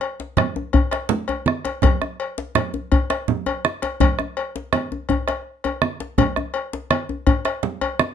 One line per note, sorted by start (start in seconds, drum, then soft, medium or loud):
0.01 cowbell soft
0.01 djembe slap soft
0.20 djembe slap medium
0.37 bombo rim medium
0.37 cowbell soft
0.37 high conga medium
0.37 low conga medium
0.56 djembe tone medium
0.73 bombo low medium
0.73 cowbell soft
0.73 high conga soft
0.73 djembe bass medium
0.91 bombo rim medium
0.91 cowbell soft
0.91 djembe slap medium
1.09 low conga medium
1.28 cowbell soft
1.28 djembe tone medium
1.46 bombo rim medium
1.46 high conga medium
1.65 cowbell soft
1.65 djembe slap medium
1.82 bombo low medium
1.82 cowbell medium
1.82 djembe slap soft
1.82 low conga medium
1.82 djembe bass medium
2.02 bombo rim medium
2.02 djembe slap soft
2.02 djembe tone medium
2.20 cowbell soft
2.38 djembe slap medium
2.55 bombo rim medium
2.55 cowbell soft
2.55 djembe slap soft
2.55 high conga medium
2.55 low conga medium
2.74 djembe slap soft
2.74 high conga soft
2.74 djembe tone medium
2.92 bombo low medium
2.92 cowbell soft
2.92 djembe bass medium
3.10 bombo rim medium
3.10 cowbell soft
3.10 djembe slap medium
3.28 bombo rim soft
3.28 low conga medium
3.46 cowbell soft
3.46 djembe tone medium
3.65 bombo rim loud
3.65 high conga medium
3.82 bombo rim soft
3.82 cowbell soft
3.82 djembe slap medium
3.82 high conga soft
4.00 bombo low loud
4.00 cowbell medium
4.00 djembe bass medium
4.00 low conga medium
4.19 bombo rim medium
4.19 djembe tone medium
4.37 cowbell soft
4.37 djembe slap soft
4.56 djembe slap medium
4.73 bombo rim loud
4.73 cowbell soft
4.73 high conga medium
4.73 low conga medium
4.92 djembe tone medium
5.09 bombo low medium
5.09 cowbell soft
5.09 high conga soft
5.09 djembe bass medium
5.28 bombo rim medium
5.28 cowbell soft
5.28 djembe slap medium
5.64 cowbell soft
5.64 djembe tone medium
5.82 bombo rim loud
5.82 high conga medium
6.00 djembe slap medium
6.18 bombo low loud
6.18 cowbell medium
6.18 low conga medium
6.18 djembe bass medium
6.36 bombo rim medium
6.36 djembe tone medium
6.54 cowbell soft
6.54 djembe slap soft
6.73 djembe slap medium
6.91 bombo rim loud
6.91 cowbell soft
6.91 high conga medium
7.09 djembe tone medium
7.27 bombo low medium
7.27 cowbell medium
7.27 high conga soft
7.27 djembe bass medium
7.45 bombo rim medium
7.45 cowbell soft
7.45 djembe slap medium
7.63 low conga medium
7.81 cowbell medium
7.81 djembe tone medium
7.99 bombo rim loud
7.99 high conga medium